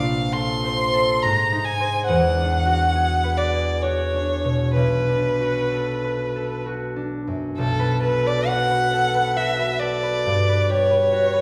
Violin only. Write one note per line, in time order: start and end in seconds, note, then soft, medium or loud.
0.00 0.34 F5 medium
0.33 1.24 C6 medium
1.22 1.66 A#5 medium
1.64 2.06 G#5 medium
2.07 3.39 F#5 medium
3.38 3.84 D5 medium
3.82 4.75 C#5 medium
4.76 6.63 B4 medium
7.58 8.00 A4 medium
8.02 8.28 B4 medium
8.27 8.48 D5 medium
8.47 9.38 F#5 medium
9.37 9.81 E5 medium
9.80 10.71 D5 medium
10.69 11.41 C#5 medium